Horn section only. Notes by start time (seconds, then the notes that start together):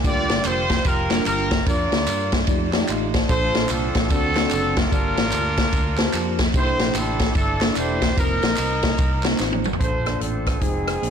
0.05 F4 G4 D5
0.46 F4 G4 C5
0.86 F4 G4 A#4
1.26 F4 G4 A#4
1.67 F4 A#4 D5
3.30 F4 A4 C5
3.71 C4 D4 A4
4.12 C4 F#4 A4
4.79 D4 F4 A#4
6.55 E4 G4 C5
6.96 D4 E4 A4
7.36 D4 E4 A4
7.77 E4 G4 C5
8.18 D#4 A#4
9.80 F4 A4 C5
10.21 C4 D4 A4
10.61 C4 D#4 G#4